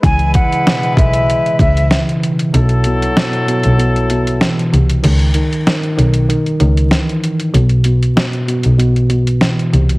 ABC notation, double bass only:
X:1
M:4/4
L:1/16
Q:"Swing 16ths" 1/4=96
K:C#m
V:1 name="Double bass" clef=bass
C,,2 z4 B,,,2 z2 C,,2 z4 | B,,,4 z3 B,,,4- B,,, z2 ^B,,,2 | C,,2 z4 B,,,2 z2 C,,2 z4 | B,,,4 z3 B,,,4- B,,, z2 ^B,,,2 |]